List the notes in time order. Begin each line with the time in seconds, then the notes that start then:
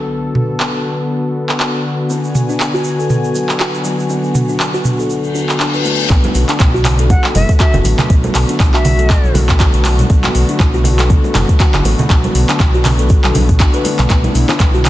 Already playing: D3 B3 F#4 A4, impact
0.35 mid tom
0.60 clap
1.49 clap
1.60 clap
2.10 B3 G#5, shaker
2.24 shaker
2.35 mid tom, shaker
2.49 D4, shaker
2.60 clap, shaker
2.74 F#4, shaker
2.84 shaker
2.99 A4, shaker
3.10 mid tom, shaker
3.24 shaker
3.35 F#3, shaker
3.49 clap, shaker
3.60 F#4, clap, shaker
3.74 shaker
3.85 F#3, shaker
3.99 shaker
4.10 B3, shaker
4.24 shaker
4.35 mid tom, shaker
4.49 D4, shaker
4.60 clap, shaker
4.74 F#4, shaker
4.85 mid tom, shaker
4.99 A4, shaker
5.10 reverse cymbal, shaker
5.24 shaker
5.35 D4, shaker
5.49 clap, shaker
5.60 D4, clap, shaker
5.74 B4, shaker
5.85 A3, shaker
6.00 shaker
6.10 B1 D3 A3 B3 F#4, kick, clap, closed hi-hat, muted conga, shaker
6.24 closed hi-hat, high conga, shaker
6.35 B1, open hi-hat, muted conga, shaker
6.49 D4, clap, closed hi-hat, shaker
6.60 B1, kick, clap, closed hi-hat, muted conga, high conga, shaker
6.74 F#4, shaker
6.85 clap, open hi-hat, low conga, shaker
6.99 A4, closed hi-hat, muted conga, shaker
7.10 F#5, kick, closed hi-hat, low conga, shaker
7.24 clap, muted conga, shaker
7.35 F#1 F#3 E5, mid tom, open hi-hat, high conga, shaker
7.49 kick, closed hi-hat, muted conga, shaker
7.60 F#4 E5, kick, clap, closed hi-hat, shaker
7.74 F#1, closed hi-hat, low conga, shaker
7.84 A1 F#3, open hi-hat, muted conga, high conga, shaker
7.98 clap, closed hi-hat, mid tom, low conga, shaker
8.10 B1 B3, kick, closed hi-hat, muted conga, shaker
8.24 closed hi-hat, high conga, shaker
8.35 B1, clap, open hi-hat, muted conga, shaker
8.49 D4, closed hi-hat, shaker
8.59 B1, kick, clap, closed hi-hat, muted conga, high conga, shaker
8.74 F#4 E5, clap, shaker
8.85 mid tom, open hi-hat, low conga, shaker
8.99 A4, closed hi-hat, muted conga, shaker
9.10 kick, clap, closed hi-hat, shaker
9.24 B1, muted conga, shaker
9.34 B1 F#3, open hi-hat, high conga, low conga, shaker
9.49 kick, clap, closed hi-hat, mid tom, muted conga, shaker
9.60 F#4, kick, clap, closed hi-hat, shaker
9.74 B1, closed hi-hat, shaker
9.84 F#3, clap, open hi-hat, muted conga, shaker
9.99 closed hi-hat, mid tom, high conga, shaker
10.10 B1 B3, kick, closed hi-hat, muted conga, shaker
10.24 clap, closed hi-hat, high conga, shaker
10.34 B1, open hi-hat, muted conga, shaker
10.49 D4, closed hi-hat, shaker
10.59 B1, kick, clap, closed hi-hat, muted conga, high conga, shaker
10.74 F#4, shaker
10.84 open hi-hat, low conga, shaker
10.98 A4, clap, closed hi-hat, muted conga, shaker
11.10 kick, closed hi-hat, low conga, shaker
11.24 muted conga, shaker
11.35 F#1 F#3, clap, mid tom, open hi-hat, high conga, shaker
11.49 kick, closed hi-hat, muted conga, shaker
11.60 F#4, kick, clap, closed hi-hat, shaker
11.74 F#1, clap, closed hi-hat, low conga, shaker
11.85 A1 F#3, open hi-hat, muted conga, high conga, shaker
11.99 closed hi-hat, mid tom, low conga, shaker
12.10 B1 B3, kick, clap, closed hi-hat, muted conga, shaker
12.24 closed hi-hat, high conga, shaker
12.35 B1, open hi-hat, muted conga, shaker
12.49 D4, clap, closed hi-hat, shaker
12.60 B1, kick, clap, closed hi-hat, muted conga, high conga, shaker
12.74 F#4, shaker
12.85 clap, mid tom, open hi-hat, low conga, shaker
12.99 A4, closed hi-hat, muted conga, shaker
13.09 kick, closed hi-hat, shaker
13.24 B1, clap, closed hi-hat, muted conga, shaker
13.35 B1 D4, open hi-hat, high conga, low conga, shaker
13.49 kick, closed hi-hat, mid tom, muted conga, shaker
13.60 D4, kick, clap, closed hi-hat, shaker
13.73 B4, closed hi-hat, shaker
13.85 A3, open hi-hat, muted conga, shaker
13.99 B1, clap, closed hi-hat, mid tom, high conga, shaker
14.10 B1 B3 E4, kick, clap, closed hi-hat, muted conga, shaker
14.24 closed hi-hat, high conga, shaker
14.35 B1, open hi-hat, muted conga, shaker
14.49 D4, clap, closed hi-hat, high bongo, low bongo, shaker
14.60 B1, kick, clap, closed hi-hat, muted conga, high conga, shaker
14.74 F#4, shaker
14.85 clap, open hi-hat, low conga, shaker